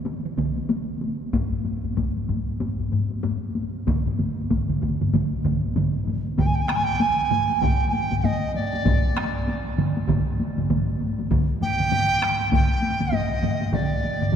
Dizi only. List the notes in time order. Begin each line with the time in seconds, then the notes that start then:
6.39 G5
6.46 G#5
6.54 G5
6.61 G#5
6.67 G5
6.75 G#5
6.83 G5
7.00 G#5
7.61 G5
7.88 G#5
7.92 G5
8.19 G5
8.24 D#5
8.54 D5
11.62 G5
12.54 G5
13.14 D#5
13.74 D5